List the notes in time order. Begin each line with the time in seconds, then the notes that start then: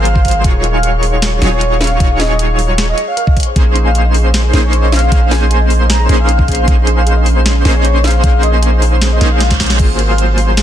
Already playing: G#1 F#3 A#3 F4 G#4 A#4 C5 F5 C6
0.05 G#4, closed hi-hat
0.16 F5, kick
0.25 G#4, kick, closed hi-hat
0.28 closed hi-hat
0.31 C5, closed hi-hat
0.44 D#1 F#3 D#4 F4 G#4 C#5 C#6, kick, closed hi-hat
0.54 G#4
0.64 G#4, closed hi-hat
0.74 F5 G#5
0.83 G#4 F5, closed hi-hat
0.94 F5
1.03 G#4, open hi-hat
1.13 C#5
1.22 G#4, snare, closed hi-hat
1.32 G#4
1.42 D#1 F#3 D#4 F4 G#4 C#5, snare, closed hi-hat
1.52 C#5 G#5
1.61 G#4, closed hi-hat
1.71 F5
1.81 G#4 F5, snare, closed hi-hat
1.84 closed hi-hat
1.87 C#5, closed hi-hat
2.00 D#1 F#3 D#4 F4 G#4 C#5, kick, closed hi-hat
2.10 G#4
2.20 G#4 D#5, snare, closed hi-hat
2.30 D#5 G#5
2.39 G#4, closed hi-hat
2.49 F5
2.59 G#4, open hi-hat
2.69 C#5
2.78 G#4, snare, closed hi-hat
2.88 G#4 D#5
2.98 G#4, closed hi-hat
3.08 C#5 F5
3.17 A#4 F5, closed hi-hat
3.27 D#5 F5, kick
3.36 C#4 C#5 D#5 C6, kick, closed hi-hat
3.40 closed hi-hat
3.43 C5, closed hi-hat
3.56 A#1 A#3 C#4 D#4 G#4 C5, kick, closed hi-hat
3.66 G#4
3.75 G#4, closed hi-hat
3.86 F5 G#5
3.95 G#4 F5, closed hi-hat
4.05 D#5
4.14 G#4, open hi-hat
4.25 C5
4.34 G#4, snare, closed hi-hat
4.44 G#4
4.53 A#1 A#3 C#4 D#4 G#4 C5, snare, closed hi-hat
4.63 C#5 G#5
4.73 G#4, closed hi-hat
4.83 D#5
4.92 G#4 F5, snare, closed hi-hat
4.96 closed hi-hat
4.99 C5, closed hi-hat
5.12 A#1 A#3 C#4 D#4 G#4 C5, kick, closed hi-hat
5.22 G#4
5.31 G#4 G#5, snare, closed hi-hat
5.41 G#5
5.51 G#4 G#5, closed hi-hat
5.61 D#5
5.70 G#4, open hi-hat
5.80 C5
5.90 G#4 A#5, snare, closed hi-hat
6.00 G#4
6.09 A#1 A#3 C#4 D#4 G#4 C5, closed hi-hat
6.19 F5 G#5
6.29 G#4, closed hi-hat
6.39 D#5, kick
6.48 G#4 F5, kick, closed hi-hat
6.52 closed hi-hat
6.55 C5, closed hi-hat
6.68 A#1 A#3 C#4 D#4 G#4 C5, kick, closed hi-hat
6.78 G#4
6.87 G#4, closed hi-hat
6.97 F5 G#5
7.07 G#4 F5, closed hi-hat
7.17 D#5
7.26 G#4, open hi-hat
7.36 C5
7.46 G#4, snare, closed hi-hat
7.56 G#4
7.65 A#1 A#3 C#4 D#4 G#4 C5, snare, closed hi-hat
7.75 C#5 G#5
7.85 G#4, closed hi-hat
7.95 D#5
8.04 G#4 F5, snare, closed hi-hat
8.07 closed hi-hat
8.11 C5, closed hi-hat
8.24 A#1 A#3 C#4 D#4 G#4 C5, kick, closed hi-hat
8.34 G#4
8.43 G#4 D#5, closed hi-hat
8.53 D#5 G#5
8.63 G#4, closed hi-hat
8.73 D#5
8.82 G#4, open hi-hat
8.92 C5
9.02 G#4, snare, closed hi-hat, reverse cymbal
9.12 G#4 D#5
9.21 A#1 A#3 C#4 D#4 G#4 A#4 C5, snare, closed hi-hat
9.31 A#4 F5
9.40 D#5 F5, snare, closed hi-hat
9.51 C#5 F5, kick, snare
9.60 C5, kick, snare, closed hi-hat
9.63 closed hi-hat
9.66 C#5, snare, closed hi-hat
9.79 G#1 F#3 A#3 F4 G#4 A#4 C5, kick, closed hi-hat, crash
9.89 G#4
9.99 A#4, closed hi-hat
10.09 F5 G#5
10.18 G#4 F5, closed hi-hat
10.28 F5
10.38 G#4, open hi-hat
10.48 C5
10.57 G#4, snare, closed hi-hat